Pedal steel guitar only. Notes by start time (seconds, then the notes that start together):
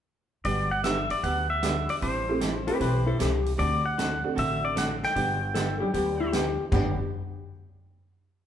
0.45 D5
0.71 F#5
0.84 E5
1.11 D5
1.24 F#5
1.50 E5
1.90 D5
2.03 C5
3.59 D5
3.86 F#5
4.39 E5
4.65 D5
4.78 F#5
5.05 G5